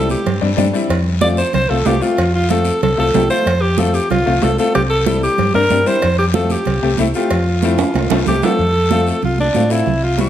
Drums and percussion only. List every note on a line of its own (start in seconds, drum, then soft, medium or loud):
0.09 high conga medium
0.09 short guiro medium
0.26 cowbell medium
0.26 high conga soft
0.26 low conga medium
0.26 long guiro medium
0.58 high conga medium
0.58 low conga medium
0.58 short guiro medium
0.74 short guiro medium
0.89 cowbell loud
0.89 high conga soft
0.89 long guiro medium
1.21 high conga loud
1.21 short guiro medium
1.37 short guiro medium
1.53 cowbell medium
1.53 high conga soft
1.53 low conga medium
1.53 long guiro medium
1.85 high conga medium
1.85 low timbale medium
1.85 short guiro medium
2.02 short guiro medium
2.17 cowbell loud
2.17 high conga soft
2.17 long guiro medium
2.49 high conga loud
2.49 short guiro medium
2.65 short guiro medium
2.81 cowbell medium
2.81 high conga soft
2.81 low conga medium
2.81 long guiro medium
3.14 high conga medium
3.14 low conga medium
3.14 low timbale medium
3.14 short guiro medium
3.30 short guiro medium
3.46 cowbell loud
3.46 high conga soft
3.46 long guiro medium
3.78 high conga loud
3.78 short guiro medium
3.94 short guiro medium
4.10 cowbell medium
4.10 high conga soft
4.10 low conga medium
4.10 long guiro medium
4.42 high conga medium
4.42 low timbale medium
4.42 short guiro medium
4.58 short guiro medium
4.75 cowbell loud
4.75 high conga soft
4.75 low conga medium
4.75 long guiro medium
5.06 high conga loud
5.06 short guiro medium
5.23 short guiro medium
5.38 cowbell medium
5.38 high conga soft
5.38 low conga medium
5.38 long guiro medium
5.54 high conga medium
5.70 high conga medium
5.70 short guiro medium
5.86 short guiro medium
6.02 cowbell loud
6.02 high conga soft
6.02 long guiro medium
6.34 high conga loud
6.34 short guiro medium
6.50 high conga medium
6.50 short guiro medium
6.65 cowbell medium
6.65 high conga soft
6.65 low conga medium
6.65 long guiro medium
6.98 high conga medium
6.98 short guiro medium
7.14 short guiro medium
7.30 cowbell loud
7.30 high conga soft
7.30 long guiro medium
7.62 high conga medium
7.62 short guiro medium
7.78 high conga medium
7.78 high timbale loud
7.78 short guiro medium
7.94 cowbell medium
7.94 high conga medium
7.94 high timbale medium
7.94 long guiro medium
8.10 low conga loud
8.10 high timbale loud
8.26 low conga medium
8.26 short guiro medium
8.42 low conga medium
8.42 low timbale loud
8.42 short guiro medium
8.59 high conga soft
8.59 long guiro medium
8.91 high conga loud
8.91 short guiro medium
9.07 short guiro medium
9.22 high conga soft
9.22 low conga medium
9.22 long guiro medium
9.38 high conga medium
9.54 high conga medium
9.54 short guiro medium
9.70 short guiro medium
9.86 high conga soft
9.86 low conga medium
9.86 long guiro medium
10.18 high conga loud
10.18 short guiro medium